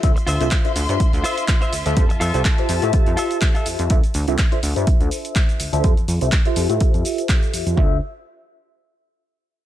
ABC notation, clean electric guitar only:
X:1
M:4/4
L:1/16
Q:"Swing 16ths" 1/4=124
K:Dm
V:1 name="Clean electric guitar"
z2 [Fce]4 z4 [Fce]2 z [Fce] z2 | z2 [FAe]4 z4 [FAe]2 z [FAe] z2 | z16 | z16 |
z16 |]